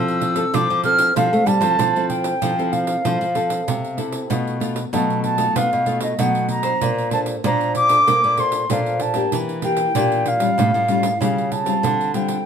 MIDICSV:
0, 0, Header, 1, 5, 480
1, 0, Start_track
1, 0, Key_signature, -1, "major"
1, 0, Tempo, 627615
1, 1374, Time_signature, 4, 2, 24, 8
1, 9528, End_track
2, 0, Start_track
2, 0, Title_t, "Flute"
2, 0, Program_c, 0, 73
2, 0, Note_on_c, 0, 88, 89
2, 418, Note_on_c, 0, 86, 98
2, 429, Note_off_c, 0, 88, 0
2, 640, Note_off_c, 0, 86, 0
2, 645, Note_on_c, 0, 89, 106
2, 872, Note_off_c, 0, 89, 0
2, 897, Note_on_c, 0, 77, 90
2, 1125, Note_on_c, 0, 81, 114
2, 1136, Note_off_c, 0, 77, 0
2, 1596, Note_off_c, 0, 81, 0
2, 1601, Note_on_c, 0, 79, 84
2, 2079, Note_on_c, 0, 77, 77
2, 2091, Note_off_c, 0, 79, 0
2, 3047, Note_off_c, 0, 77, 0
2, 3773, Note_on_c, 0, 81, 80
2, 3997, Note_off_c, 0, 81, 0
2, 4005, Note_on_c, 0, 81, 96
2, 4255, Note_on_c, 0, 77, 95
2, 4266, Note_off_c, 0, 81, 0
2, 4598, Note_off_c, 0, 77, 0
2, 4603, Note_on_c, 0, 75, 70
2, 4739, Note_on_c, 0, 78, 77
2, 4750, Note_off_c, 0, 75, 0
2, 4969, Note_off_c, 0, 78, 0
2, 4973, Note_on_c, 0, 82, 93
2, 5423, Note_off_c, 0, 82, 0
2, 5452, Note_on_c, 0, 81, 85
2, 5506, Note_off_c, 0, 81, 0
2, 5707, Note_on_c, 0, 82, 96
2, 5924, Note_off_c, 0, 82, 0
2, 5937, Note_on_c, 0, 86, 117
2, 6422, Note_on_c, 0, 84, 94
2, 6434, Note_off_c, 0, 86, 0
2, 6669, Note_on_c, 0, 77, 75
2, 6680, Note_off_c, 0, 84, 0
2, 6894, Note_on_c, 0, 81, 83
2, 6906, Note_off_c, 0, 77, 0
2, 7166, Note_off_c, 0, 81, 0
2, 7375, Note_on_c, 0, 79, 84
2, 7860, Note_on_c, 0, 77, 95
2, 7871, Note_off_c, 0, 79, 0
2, 8576, Note_off_c, 0, 77, 0
2, 8582, Note_on_c, 0, 77, 75
2, 8809, Note_on_c, 0, 81, 85
2, 8820, Note_off_c, 0, 77, 0
2, 9287, Note_off_c, 0, 81, 0
2, 9292, Note_on_c, 0, 79, 74
2, 9528, Note_off_c, 0, 79, 0
2, 9528, End_track
3, 0, Start_track
3, 0, Title_t, "Nylon-string guitar"
3, 0, Program_c, 1, 24
3, 0, Note_on_c, 1, 48, 61
3, 0, Note_on_c, 1, 60, 64
3, 0, Note_on_c, 1, 64, 57
3, 0, Note_on_c, 1, 69, 65
3, 256, Note_off_c, 1, 60, 0
3, 258, Note_off_c, 1, 64, 0
3, 259, Note_off_c, 1, 69, 0
3, 273, Note_on_c, 1, 60, 46
3, 279, Note_on_c, 1, 64, 55
3, 279, Note_on_c, 1, 69, 66
3, 391, Note_off_c, 1, 48, 0
3, 413, Note_on_c, 1, 53, 55
3, 605, Note_off_c, 1, 60, 0
3, 607, Note_off_c, 1, 64, 0
3, 608, Note_off_c, 1, 69, 0
3, 646, Note_on_c, 1, 60, 63
3, 650, Note_on_c, 1, 64, 57
3, 652, Note_on_c, 1, 69, 63
3, 852, Note_off_c, 1, 60, 0
3, 853, Note_off_c, 1, 64, 0
3, 854, Note_off_c, 1, 69, 0
3, 870, Note_off_c, 1, 53, 0
3, 891, Note_on_c, 1, 48, 62
3, 893, Note_on_c, 1, 60, 62
3, 894, Note_on_c, 1, 64, 61
3, 898, Note_on_c, 1, 69, 65
3, 1117, Note_off_c, 1, 60, 0
3, 1119, Note_off_c, 1, 64, 0
3, 1120, Note_off_c, 1, 69, 0
3, 1235, Note_on_c, 1, 60, 67
3, 1240, Note_on_c, 1, 64, 69
3, 1243, Note_on_c, 1, 69, 72
3, 1349, Note_off_c, 1, 48, 0
3, 1375, Note_on_c, 1, 53, 51
3, 1493, Note_off_c, 1, 60, 0
3, 1497, Note_off_c, 1, 64, 0
3, 1500, Note_off_c, 1, 69, 0
3, 1502, Note_on_c, 1, 60, 53
3, 1506, Note_on_c, 1, 64, 51
3, 1509, Note_on_c, 1, 69, 60
3, 1819, Note_off_c, 1, 60, 0
3, 1821, Note_off_c, 1, 64, 0
3, 1823, Note_off_c, 1, 69, 0
3, 1830, Note_off_c, 1, 53, 0
3, 1852, Note_on_c, 1, 48, 54
3, 1854, Note_on_c, 1, 60, 57
3, 1856, Note_on_c, 1, 64, 54
3, 1861, Note_on_c, 1, 69, 59
3, 1925, Note_off_c, 1, 60, 0
3, 1927, Note_off_c, 1, 64, 0
3, 1928, Note_off_c, 1, 69, 0
3, 1977, Note_on_c, 1, 60, 61
3, 1981, Note_on_c, 1, 64, 56
3, 1983, Note_on_c, 1, 69, 68
3, 2297, Note_off_c, 1, 60, 0
3, 2299, Note_off_c, 1, 64, 0
3, 2300, Note_off_c, 1, 69, 0
3, 2310, Note_off_c, 1, 48, 0
3, 2329, Note_on_c, 1, 53, 54
3, 2333, Note_on_c, 1, 60, 52
3, 2333, Note_on_c, 1, 64, 52
3, 2337, Note_on_c, 1, 69, 54
3, 2473, Note_off_c, 1, 60, 0
3, 2475, Note_off_c, 1, 64, 0
3, 2476, Note_off_c, 1, 69, 0
3, 2559, Note_on_c, 1, 60, 53
3, 2565, Note_on_c, 1, 69, 68
3, 2788, Note_off_c, 1, 53, 0
3, 2812, Note_on_c, 1, 48, 51
3, 3008, Note_off_c, 1, 60, 0
3, 3011, Note_off_c, 1, 69, 0
3, 3038, Note_on_c, 1, 60, 52
3, 3042, Note_on_c, 1, 64, 52
3, 3048, Note_on_c, 1, 69, 49
3, 3267, Note_off_c, 1, 60, 0
3, 3269, Note_off_c, 1, 48, 0
3, 3269, Note_off_c, 1, 64, 0
3, 3270, Note_off_c, 1, 69, 0
3, 3286, Note_on_c, 1, 47, 50
3, 3287, Note_on_c, 1, 57, 54
3, 3289, Note_on_c, 1, 63, 52
3, 3294, Note_on_c, 1, 65, 54
3, 3492, Note_off_c, 1, 57, 0
3, 3493, Note_off_c, 1, 63, 0
3, 3495, Note_off_c, 1, 65, 0
3, 3519, Note_on_c, 1, 57, 54
3, 3525, Note_on_c, 1, 63, 50
3, 3525, Note_on_c, 1, 65, 57
3, 3668, Note_off_c, 1, 57, 0
3, 3669, Note_off_c, 1, 63, 0
3, 3670, Note_off_c, 1, 65, 0
3, 3746, Note_off_c, 1, 47, 0
3, 3769, Note_on_c, 1, 54, 58
3, 3771, Note_on_c, 1, 57, 61
3, 3773, Note_on_c, 1, 63, 53
3, 3776, Note_on_c, 1, 65, 64
3, 4093, Note_off_c, 1, 57, 0
3, 4095, Note_off_c, 1, 63, 0
3, 4097, Note_off_c, 1, 65, 0
3, 4111, Note_on_c, 1, 57, 53
3, 4116, Note_on_c, 1, 63, 46
3, 4122, Note_on_c, 1, 65, 52
3, 4227, Note_off_c, 1, 54, 0
3, 4251, Note_on_c, 1, 47, 53
3, 4445, Note_off_c, 1, 57, 0
3, 4446, Note_off_c, 1, 63, 0
3, 4447, Note_off_c, 1, 65, 0
3, 4484, Note_on_c, 1, 57, 59
3, 4490, Note_on_c, 1, 63, 61
3, 4491, Note_on_c, 1, 65, 59
3, 4691, Note_off_c, 1, 57, 0
3, 4692, Note_off_c, 1, 63, 0
3, 4694, Note_off_c, 1, 65, 0
3, 4708, Note_off_c, 1, 47, 0
3, 4730, Note_on_c, 1, 54, 56
3, 4733, Note_on_c, 1, 57, 60
3, 4737, Note_on_c, 1, 63, 53
3, 5055, Note_off_c, 1, 57, 0
3, 5055, Note_off_c, 1, 63, 0
3, 5072, Note_on_c, 1, 62, 58
3, 5077, Note_on_c, 1, 72, 70
3, 5189, Note_off_c, 1, 54, 0
3, 5213, Note_on_c, 1, 58, 53
3, 5404, Note_off_c, 1, 62, 0
3, 5407, Note_off_c, 1, 72, 0
3, 5446, Note_on_c, 1, 62, 59
3, 5451, Note_on_c, 1, 69, 53
3, 5453, Note_on_c, 1, 72, 54
3, 5652, Note_off_c, 1, 62, 0
3, 5653, Note_off_c, 1, 69, 0
3, 5655, Note_off_c, 1, 72, 0
3, 5669, Note_off_c, 1, 58, 0
3, 5696, Note_on_c, 1, 53, 58
3, 5698, Note_on_c, 1, 62, 56
3, 5703, Note_on_c, 1, 72, 67
3, 6017, Note_off_c, 1, 62, 0
3, 6020, Note_off_c, 1, 72, 0
3, 6038, Note_on_c, 1, 62, 51
3, 6042, Note_on_c, 1, 69, 49
3, 6044, Note_on_c, 1, 72, 51
3, 6151, Note_off_c, 1, 53, 0
3, 6172, Note_on_c, 1, 58, 52
3, 6368, Note_off_c, 1, 62, 0
3, 6369, Note_off_c, 1, 69, 0
3, 6370, Note_off_c, 1, 72, 0
3, 6404, Note_on_c, 1, 62, 49
3, 6407, Note_on_c, 1, 69, 56
3, 6414, Note_on_c, 1, 72, 62
3, 6610, Note_off_c, 1, 62, 0
3, 6613, Note_off_c, 1, 69, 0
3, 6614, Note_off_c, 1, 72, 0
3, 6629, Note_off_c, 1, 58, 0
3, 6653, Note_on_c, 1, 53, 56
3, 6655, Note_on_c, 1, 62, 57
3, 6657, Note_on_c, 1, 69, 55
3, 6660, Note_on_c, 1, 72, 58
3, 6975, Note_off_c, 1, 62, 0
3, 6977, Note_off_c, 1, 69, 0
3, 6978, Note_off_c, 1, 72, 0
3, 6998, Note_on_c, 1, 58, 59
3, 7003, Note_on_c, 1, 62, 58
3, 7004, Note_on_c, 1, 67, 72
3, 7109, Note_off_c, 1, 53, 0
3, 7138, Note_on_c, 1, 52, 56
3, 7328, Note_off_c, 1, 58, 0
3, 7329, Note_off_c, 1, 62, 0
3, 7330, Note_off_c, 1, 67, 0
3, 7366, Note_on_c, 1, 58, 52
3, 7370, Note_on_c, 1, 62, 47
3, 7375, Note_on_c, 1, 67, 56
3, 7571, Note_off_c, 1, 58, 0
3, 7573, Note_off_c, 1, 62, 0
3, 7576, Note_off_c, 1, 67, 0
3, 7592, Note_off_c, 1, 52, 0
3, 7616, Note_on_c, 1, 52, 53
3, 7619, Note_on_c, 1, 58, 53
3, 7622, Note_on_c, 1, 62, 52
3, 7625, Note_on_c, 1, 67, 55
3, 7937, Note_off_c, 1, 58, 0
3, 7938, Note_off_c, 1, 62, 0
3, 7940, Note_off_c, 1, 67, 0
3, 7951, Note_on_c, 1, 55, 50
3, 7954, Note_on_c, 1, 61, 47
3, 7959, Note_on_c, 1, 65, 54
3, 8071, Note_off_c, 1, 52, 0
3, 8094, Note_on_c, 1, 45, 52
3, 8284, Note_off_c, 1, 55, 0
3, 8284, Note_off_c, 1, 61, 0
3, 8288, Note_off_c, 1, 65, 0
3, 8325, Note_on_c, 1, 55, 53
3, 8330, Note_on_c, 1, 61, 59
3, 8332, Note_on_c, 1, 65, 64
3, 8470, Note_off_c, 1, 55, 0
3, 8472, Note_off_c, 1, 61, 0
3, 8473, Note_off_c, 1, 65, 0
3, 8549, Note_off_c, 1, 45, 0
3, 8572, Note_on_c, 1, 55, 54
3, 8575, Note_on_c, 1, 61, 59
3, 8579, Note_on_c, 1, 65, 61
3, 8894, Note_off_c, 1, 55, 0
3, 8895, Note_off_c, 1, 61, 0
3, 8897, Note_off_c, 1, 65, 0
3, 8913, Note_on_c, 1, 55, 57
3, 8916, Note_on_c, 1, 60, 58
3, 8920, Note_on_c, 1, 65, 65
3, 9050, Note_on_c, 1, 50, 48
3, 9244, Note_off_c, 1, 55, 0
3, 9245, Note_off_c, 1, 60, 0
3, 9248, Note_off_c, 1, 65, 0
3, 9284, Note_on_c, 1, 55, 57
3, 9289, Note_on_c, 1, 60, 57
3, 9289, Note_on_c, 1, 65, 55
3, 9490, Note_off_c, 1, 55, 0
3, 9490, Note_off_c, 1, 60, 0
3, 9492, Note_off_c, 1, 65, 0
3, 9507, Note_off_c, 1, 50, 0
3, 9528, End_track
4, 0, Start_track
4, 0, Title_t, "Nylon-string guitar"
4, 0, Program_c, 2, 24
4, 0, Note_on_c, 2, 53, 105
4, 337, Note_off_c, 2, 53, 0
4, 410, Note_on_c, 2, 53, 100
4, 514, Note_off_c, 2, 53, 0
4, 538, Note_on_c, 2, 53, 79
4, 842, Note_off_c, 2, 53, 0
4, 888, Note_on_c, 2, 53, 93
4, 992, Note_off_c, 2, 53, 0
4, 1016, Note_on_c, 2, 57, 76
4, 1116, Note_off_c, 2, 57, 0
4, 1119, Note_on_c, 2, 55, 84
4, 1229, Note_on_c, 2, 53, 83
4, 1233, Note_off_c, 2, 55, 0
4, 1348, Note_off_c, 2, 53, 0
4, 1368, Note_on_c, 2, 53, 87
4, 1778, Note_off_c, 2, 53, 0
4, 1849, Note_on_c, 2, 53, 93
4, 2259, Note_off_c, 2, 53, 0
4, 2332, Note_on_c, 2, 53, 86
4, 2435, Note_off_c, 2, 53, 0
4, 2454, Note_on_c, 2, 53, 66
4, 2760, Note_off_c, 2, 53, 0
4, 2812, Note_on_c, 2, 48, 83
4, 3221, Note_off_c, 2, 48, 0
4, 3288, Note_on_c, 2, 47, 87
4, 3698, Note_off_c, 2, 47, 0
4, 3769, Note_on_c, 2, 47, 94
4, 4179, Note_off_c, 2, 47, 0
4, 4252, Note_on_c, 2, 59, 82
4, 4355, Note_off_c, 2, 59, 0
4, 4382, Note_on_c, 2, 47, 74
4, 4684, Note_off_c, 2, 47, 0
4, 4734, Note_on_c, 2, 47, 91
4, 5142, Note_off_c, 2, 47, 0
4, 5212, Note_on_c, 2, 46, 84
4, 5621, Note_off_c, 2, 46, 0
4, 5691, Note_on_c, 2, 46, 98
4, 6100, Note_off_c, 2, 46, 0
4, 6174, Note_on_c, 2, 58, 87
4, 6276, Note_off_c, 2, 58, 0
4, 6301, Note_on_c, 2, 46, 71
4, 6604, Note_off_c, 2, 46, 0
4, 6655, Note_on_c, 2, 46, 82
4, 7062, Note_off_c, 2, 46, 0
4, 7136, Note_on_c, 2, 52, 83
4, 7543, Note_off_c, 2, 52, 0
4, 7614, Note_on_c, 2, 46, 96
4, 8021, Note_off_c, 2, 46, 0
4, 8090, Note_on_c, 2, 45, 85
4, 8193, Note_off_c, 2, 45, 0
4, 8216, Note_on_c, 2, 45, 68
4, 8521, Note_off_c, 2, 45, 0
4, 8570, Note_on_c, 2, 49, 84
4, 8979, Note_off_c, 2, 49, 0
4, 9050, Note_on_c, 2, 50, 84
4, 9459, Note_off_c, 2, 50, 0
4, 9528, End_track
5, 0, Start_track
5, 0, Title_t, "Pandeiro"
5, 64, Note_on_c, 9, 54, 33
5, 140, Note_off_c, 9, 54, 0
5, 164, Note_on_c, 9, 54, 60
5, 241, Note_off_c, 9, 54, 0
5, 273, Note_on_c, 9, 54, 69
5, 350, Note_off_c, 9, 54, 0
5, 414, Note_on_c, 9, 54, 85
5, 490, Note_off_c, 9, 54, 0
5, 541, Note_on_c, 9, 54, 31
5, 617, Note_off_c, 9, 54, 0
5, 639, Note_on_c, 9, 54, 57
5, 715, Note_off_c, 9, 54, 0
5, 753, Note_on_c, 9, 54, 72
5, 830, Note_off_c, 9, 54, 0
5, 892, Note_on_c, 9, 54, 88
5, 968, Note_off_c, 9, 54, 0
5, 1021, Note_on_c, 9, 54, 33
5, 1097, Note_off_c, 9, 54, 0
5, 1123, Note_on_c, 9, 54, 61
5, 1200, Note_off_c, 9, 54, 0
5, 1235, Note_on_c, 9, 54, 65
5, 1312, Note_off_c, 9, 54, 0
5, 1372, Note_on_c, 9, 54, 76
5, 1448, Note_off_c, 9, 54, 0
5, 1499, Note_on_c, 9, 54, 33
5, 1576, Note_off_c, 9, 54, 0
5, 1603, Note_on_c, 9, 54, 57
5, 1680, Note_off_c, 9, 54, 0
5, 1715, Note_on_c, 9, 54, 64
5, 1792, Note_off_c, 9, 54, 0
5, 1851, Note_on_c, 9, 54, 76
5, 1927, Note_off_c, 9, 54, 0
5, 1984, Note_on_c, 9, 54, 29
5, 2061, Note_off_c, 9, 54, 0
5, 2086, Note_on_c, 9, 54, 57
5, 2162, Note_off_c, 9, 54, 0
5, 2197, Note_on_c, 9, 54, 61
5, 2273, Note_off_c, 9, 54, 0
5, 2333, Note_on_c, 9, 54, 77
5, 2410, Note_off_c, 9, 54, 0
5, 2457, Note_on_c, 9, 54, 30
5, 2534, Note_off_c, 9, 54, 0
5, 2563, Note_on_c, 9, 54, 54
5, 2640, Note_off_c, 9, 54, 0
5, 2678, Note_on_c, 9, 54, 64
5, 2754, Note_off_c, 9, 54, 0
5, 2815, Note_on_c, 9, 54, 80
5, 2891, Note_off_c, 9, 54, 0
5, 2941, Note_on_c, 9, 54, 29
5, 3017, Note_off_c, 9, 54, 0
5, 3043, Note_on_c, 9, 54, 56
5, 3120, Note_off_c, 9, 54, 0
5, 3155, Note_on_c, 9, 54, 62
5, 3231, Note_off_c, 9, 54, 0
5, 3291, Note_on_c, 9, 54, 76
5, 3368, Note_off_c, 9, 54, 0
5, 3422, Note_on_c, 9, 54, 30
5, 3499, Note_off_c, 9, 54, 0
5, 3528, Note_on_c, 9, 54, 60
5, 3604, Note_off_c, 9, 54, 0
5, 3639, Note_on_c, 9, 54, 64
5, 3716, Note_off_c, 9, 54, 0
5, 3775, Note_on_c, 9, 54, 72
5, 3851, Note_off_c, 9, 54, 0
5, 3903, Note_on_c, 9, 54, 29
5, 3979, Note_off_c, 9, 54, 0
5, 4006, Note_on_c, 9, 54, 52
5, 4082, Note_off_c, 9, 54, 0
5, 4115, Note_on_c, 9, 54, 64
5, 4191, Note_off_c, 9, 54, 0
5, 4251, Note_on_c, 9, 54, 84
5, 4327, Note_off_c, 9, 54, 0
5, 4380, Note_on_c, 9, 54, 32
5, 4456, Note_off_c, 9, 54, 0
5, 4483, Note_on_c, 9, 54, 48
5, 4559, Note_off_c, 9, 54, 0
5, 4593, Note_on_c, 9, 54, 70
5, 4670, Note_off_c, 9, 54, 0
5, 4731, Note_on_c, 9, 54, 80
5, 4808, Note_off_c, 9, 54, 0
5, 4855, Note_on_c, 9, 54, 34
5, 4932, Note_off_c, 9, 54, 0
5, 4960, Note_on_c, 9, 54, 50
5, 5037, Note_off_c, 9, 54, 0
5, 5070, Note_on_c, 9, 54, 66
5, 5147, Note_off_c, 9, 54, 0
5, 5212, Note_on_c, 9, 54, 75
5, 5288, Note_off_c, 9, 54, 0
5, 5342, Note_on_c, 9, 54, 31
5, 5418, Note_off_c, 9, 54, 0
5, 5440, Note_on_c, 9, 54, 60
5, 5516, Note_off_c, 9, 54, 0
5, 5553, Note_on_c, 9, 54, 61
5, 5629, Note_off_c, 9, 54, 0
5, 5691, Note_on_c, 9, 54, 78
5, 5768, Note_off_c, 9, 54, 0
5, 5817, Note_on_c, 9, 54, 30
5, 5894, Note_off_c, 9, 54, 0
5, 5926, Note_on_c, 9, 54, 59
5, 6002, Note_off_c, 9, 54, 0
5, 6037, Note_on_c, 9, 54, 66
5, 6114, Note_off_c, 9, 54, 0
5, 6178, Note_on_c, 9, 54, 75
5, 6255, Note_off_c, 9, 54, 0
5, 6303, Note_on_c, 9, 54, 30
5, 6379, Note_off_c, 9, 54, 0
5, 6404, Note_on_c, 9, 54, 52
5, 6481, Note_off_c, 9, 54, 0
5, 6514, Note_on_c, 9, 54, 62
5, 6591, Note_off_c, 9, 54, 0
5, 6652, Note_on_c, 9, 54, 78
5, 6728, Note_off_c, 9, 54, 0
5, 6779, Note_on_c, 9, 54, 31
5, 6855, Note_off_c, 9, 54, 0
5, 6880, Note_on_c, 9, 54, 54
5, 6956, Note_off_c, 9, 54, 0
5, 6989, Note_on_c, 9, 54, 57
5, 7065, Note_off_c, 9, 54, 0
5, 7129, Note_on_c, 9, 54, 72
5, 7205, Note_off_c, 9, 54, 0
5, 7258, Note_on_c, 9, 54, 33
5, 7334, Note_off_c, 9, 54, 0
5, 7359, Note_on_c, 9, 54, 60
5, 7435, Note_off_c, 9, 54, 0
5, 7469, Note_on_c, 9, 54, 63
5, 7546, Note_off_c, 9, 54, 0
5, 7610, Note_on_c, 9, 54, 79
5, 7686, Note_off_c, 9, 54, 0
5, 7738, Note_on_c, 9, 54, 32
5, 7814, Note_off_c, 9, 54, 0
5, 7844, Note_on_c, 9, 54, 57
5, 7920, Note_off_c, 9, 54, 0
5, 7955, Note_on_c, 9, 54, 65
5, 8032, Note_off_c, 9, 54, 0
5, 8097, Note_on_c, 9, 54, 84
5, 8174, Note_off_c, 9, 54, 0
5, 8222, Note_on_c, 9, 54, 30
5, 8299, Note_off_c, 9, 54, 0
5, 8324, Note_on_c, 9, 54, 52
5, 8400, Note_off_c, 9, 54, 0
5, 8437, Note_on_c, 9, 54, 67
5, 8513, Note_off_c, 9, 54, 0
5, 8578, Note_on_c, 9, 54, 75
5, 8654, Note_off_c, 9, 54, 0
5, 8706, Note_on_c, 9, 54, 31
5, 8782, Note_off_c, 9, 54, 0
5, 8808, Note_on_c, 9, 54, 55
5, 8884, Note_off_c, 9, 54, 0
5, 8919, Note_on_c, 9, 54, 59
5, 8996, Note_off_c, 9, 54, 0
5, 9057, Note_on_c, 9, 54, 75
5, 9133, Note_off_c, 9, 54, 0
5, 9183, Note_on_c, 9, 54, 31
5, 9259, Note_off_c, 9, 54, 0
5, 9286, Note_on_c, 9, 54, 57
5, 9363, Note_off_c, 9, 54, 0
5, 9395, Note_on_c, 9, 54, 63
5, 9472, Note_off_c, 9, 54, 0
5, 9528, End_track
0, 0, End_of_file